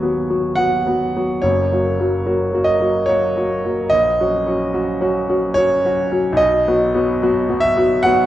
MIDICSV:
0, 0, Header, 1, 2, 480
1, 0, Start_track
1, 0, Key_signature, 5, "major"
1, 0, Tempo, 855920
1, 808, Time_signature, 3, 2, 24, 8
1, 808, Tempo, 825309
1, 4775, End_track
2, 0, Start_track
2, 0, Title_t, "Grand piano"
2, 0, Program_c, 0, 0
2, 0, Control_c, 0, 64, 127
2, 0, Note_on_c, 0, 27, 49
2, 0, Note_on_c, 0, 39, 51
2, 0, Note_on_c, 0, 54, 42
2, 0, Note_on_c, 0, 59, 43
2, 0, Note_on_c, 0, 66, 48
2, 0, Note_on_c, 0, 80, 90
2, 11, Note_off_c, 0, 54, 0
2, 11, Note_on_c, 0, 54, 43
2, 14, Note_off_c, 0, 59, 0
2, 14, Note_on_c, 0, 59, 42
2, 16, Note_off_c, 0, 66, 0
2, 16, Note_on_c, 0, 66, 45
2, 149, Note_off_c, 0, 54, 0
2, 151, Note_off_c, 0, 59, 0
2, 152, Note_off_c, 0, 66, 0
2, 167, Note_on_c, 0, 59, 40
2, 168, Note_on_c, 0, 54, 41
2, 171, Note_on_c, 0, 66, 45
2, 308, Note_off_c, 0, 59, 0
2, 309, Note_off_c, 0, 54, 0
2, 310, Note_off_c, 0, 66, 0
2, 312, Note_on_c, 0, 78, 97
2, 316, Note_off_c, 0, 80, 0
2, 324, Note_on_c, 0, 54, 42
2, 327, Note_on_c, 0, 59, 45
2, 328, Note_on_c, 0, 66, 49
2, 469, Note_off_c, 0, 54, 0
2, 470, Note_off_c, 0, 59, 0
2, 471, Note_off_c, 0, 66, 0
2, 483, Note_on_c, 0, 54, 43
2, 485, Note_on_c, 0, 59, 46
2, 488, Note_on_c, 0, 66, 45
2, 631, Note_off_c, 0, 54, 0
2, 632, Note_off_c, 0, 59, 0
2, 634, Note_off_c, 0, 66, 0
2, 651, Note_on_c, 0, 59, 42
2, 653, Note_on_c, 0, 54, 42
2, 655, Note_on_c, 0, 66, 47
2, 794, Note_off_c, 0, 59, 0
2, 794, Note_on_c, 0, 73, 86
2, 795, Note_off_c, 0, 54, 0
2, 796, Note_off_c, 0, 66, 0
2, 801, Note_on_c, 0, 30, 55
2, 803, Note_off_c, 0, 78, 0
2, 803, Note_on_c, 0, 42, 53
2, 818, Control_c, 0, 64, 0
2, 820, Note_off_c, 0, 27, 0
2, 820, Note_off_c, 0, 39, 0
2, 900, Control_c, 0, 64, 127
2, 961, Note_off_c, 0, 30, 0
2, 962, Note_off_c, 0, 42, 0
2, 971, Note_on_c, 0, 54, 46
2, 971, Note_on_c, 0, 58, 45
2, 974, Note_on_c, 0, 66, 47
2, 1111, Note_off_c, 0, 58, 0
2, 1112, Note_off_c, 0, 54, 0
2, 1114, Note_off_c, 0, 66, 0
2, 1130, Note_on_c, 0, 54, 45
2, 1134, Note_on_c, 0, 58, 43
2, 1136, Note_on_c, 0, 66, 48
2, 1270, Note_off_c, 0, 54, 0
2, 1272, Note_off_c, 0, 58, 0
2, 1273, Note_off_c, 0, 66, 0
2, 1281, Note_on_c, 0, 54, 47
2, 1285, Note_on_c, 0, 58, 46
2, 1286, Note_on_c, 0, 66, 52
2, 1425, Note_off_c, 0, 54, 0
2, 1428, Note_off_c, 0, 58, 0
2, 1428, Note_off_c, 0, 66, 0
2, 1442, Note_on_c, 0, 54, 49
2, 1448, Note_on_c, 0, 58, 47
2, 1450, Note_on_c, 0, 66, 52
2, 1507, Note_on_c, 0, 75, 93
2, 1517, Note_off_c, 0, 73, 0
2, 1588, Note_off_c, 0, 54, 0
2, 1591, Note_off_c, 0, 58, 0
2, 1592, Note_off_c, 0, 66, 0
2, 1599, Note_on_c, 0, 54, 44
2, 1603, Note_on_c, 0, 58, 45
2, 1605, Note_on_c, 0, 66, 49
2, 1747, Note_off_c, 0, 54, 0
2, 1748, Note_on_c, 0, 73, 94
2, 1749, Note_off_c, 0, 58, 0
2, 1750, Note_off_c, 0, 66, 0
2, 1758, Note_off_c, 0, 75, 0
2, 1763, Note_on_c, 0, 54, 51
2, 1766, Note_on_c, 0, 58, 54
2, 1768, Note_on_c, 0, 66, 56
2, 1910, Note_off_c, 0, 54, 0
2, 1911, Note_off_c, 0, 58, 0
2, 1912, Note_off_c, 0, 66, 0
2, 1928, Note_on_c, 0, 54, 50
2, 1932, Note_on_c, 0, 58, 50
2, 1934, Note_on_c, 0, 66, 51
2, 2072, Note_off_c, 0, 54, 0
2, 2074, Note_off_c, 0, 58, 0
2, 2076, Note_off_c, 0, 66, 0
2, 2089, Note_on_c, 0, 54, 50
2, 2094, Note_on_c, 0, 58, 49
2, 2095, Note_on_c, 0, 66, 50
2, 2232, Note_off_c, 0, 54, 0
2, 2234, Note_off_c, 0, 58, 0
2, 2235, Note_off_c, 0, 66, 0
2, 2236, Note_on_c, 0, 75, 103
2, 2238, Note_off_c, 0, 73, 0
2, 2251, Note_on_c, 0, 34, 60
2, 2256, Control_c, 0, 64, 0
2, 2330, Control_c, 0, 64, 127
2, 2401, Note_off_c, 0, 34, 0
2, 2414, Note_on_c, 0, 54, 50
2, 2416, Note_on_c, 0, 61, 50
2, 2417, Note_on_c, 0, 66, 57
2, 2548, Note_off_c, 0, 54, 0
2, 2549, Note_off_c, 0, 61, 0
2, 2550, Note_off_c, 0, 66, 0
2, 2568, Note_on_c, 0, 54, 51
2, 2571, Note_on_c, 0, 61, 53
2, 2573, Note_on_c, 0, 66, 54
2, 2705, Note_off_c, 0, 54, 0
2, 2707, Note_off_c, 0, 61, 0
2, 2708, Note_off_c, 0, 66, 0
2, 2722, Note_on_c, 0, 54, 54
2, 2726, Note_on_c, 0, 61, 51
2, 2727, Note_on_c, 0, 66, 57
2, 2863, Note_off_c, 0, 54, 0
2, 2865, Note_off_c, 0, 61, 0
2, 2866, Note_off_c, 0, 66, 0
2, 2882, Note_on_c, 0, 54, 53
2, 2885, Note_on_c, 0, 66, 61
2, 2887, Note_on_c, 0, 61, 53
2, 3026, Note_off_c, 0, 54, 0
2, 3027, Note_off_c, 0, 66, 0
2, 3028, Note_off_c, 0, 61, 0
2, 3044, Note_on_c, 0, 54, 52
2, 3049, Note_on_c, 0, 61, 50
2, 3051, Note_on_c, 0, 66, 57
2, 3187, Note_off_c, 0, 54, 0
2, 3190, Note_off_c, 0, 61, 0
2, 3191, Note_off_c, 0, 66, 0
2, 3195, Note_off_c, 0, 75, 0
2, 3195, Note_on_c, 0, 73, 114
2, 3213, Note_on_c, 0, 54, 53
2, 3213, Note_on_c, 0, 61, 57
2, 3214, Note_on_c, 0, 66, 58
2, 3353, Note_off_c, 0, 54, 0
2, 3353, Note_off_c, 0, 61, 0
2, 3354, Note_off_c, 0, 66, 0
2, 3373, Note_on_c, 0, 54, 57
2, 3376, Note_on_c, 0, 61, 55
2, 3378, Note_on_c, 0, 66, 59
2, 3515, Note_off_c, 0, 54, 0
2, 3517, Note_off_c, 0, 61, 0
2, 3518, Note_off_c, 0, 66, 0
2, 3528, Note_on_c, 0, 61, 54
2, 3530, Note_on_c, 0, 54, 50
2, 3534, Note_on_c, 0, 66, 52
2, 3649, Note_on_c, 0, 35, 73
2, 3674, Note_off_c, 0, 61, 0
2, 3675, Note_off_c, 0, 54, 0
2, 3675, Note_on_c, 0, 75, 109
2, 3677, Note_off_c, 0, 66, 0
2, 3686, Note_off_c, 0, 73, 0
2, 3698, Control_c, 0, 64, 0
2, 3768, Control_c, 0, 64, 127
2, 3825, Note_off_c, 0, 35, 0
2, 3853, Note_on_c, 0, 54, 53
2, 3854, Note_on_c, 0, 59, 51
2, 3855, Note_on_c, 0, 66, 58
2, 3994, Note_off_c, 0, 54, 0
2, 3994, Note_off_c, 0, 59, 0
2, 3995, Note_off_c, 0, 66, 0
2, 4009, Note_on_c, 0, 54, 56
2, 4009, Note_on_c, 0, 59, 56
2, 4011, Note_on_c, 0, 66, 59
2, 4149, Note_off_c, 0, 54, 0
2, 4149, Note_off_c, 0, 59, 0
2, 4150, Note_off_c, 0, 66, 0
2, 4169, Note_on_c, 0, 54, 58
2, 4173, Note_on_c, 0, 59, 57
2, 4174, Note_on_c, 0, 66, 62
2, 4307, Note_off_c, 0, 54, 0
2, 4310, Note_off_c, 0, 59, 0
2, 4311, Note_off_c, 0, 66, 0
2, 4324, Note_on_c, 0, 54, 56
2, 4328, Note_on_c, 0, 59, 57
2, 4329, Note_on_c, 0, 66, 62
2, 4393, Note_off_c, 0, 75, 0
2, 4393, Note_on_c, 0, 76, 108
2, 4466, Note_off_c, 0, 54, 0
2, 4468, Note_off_c, 0, 59, 0
2, 4469, Note_off_c, 0, 66, 0
2, 4486, Note_on_c, 0, 54, 52
2, 4491, Note_on_c, 0, 59, 53
2, 4492, Note_on_c, 0, 66, 63
2, 4631, Note_off_c, 0, 54, 0
2, 4634, Note_off_c, 0, 59, 0
2, 4634, Note_off_c, 0, 66, 0
2, 4639, Note_on_c, 0, 78, 116
2, 4641, Note_off_c, 0, 76, 0
2, 4652, Note_on_c, 0, 54, 57
2, 4655, Note_on_c, 0, 59, 61
2, 4657, Note_on_c, 0, 66, 64
2, 4775, Note_off_c, 0, 54, 0
2, 4775, Note_off_c, 0, 59, 0
2, 4775, Note_off_c, 0, 66, 0
2, 4775, Note_off_c, 0, 78, 0
2, 4775, End_track
0, 0, End_of_file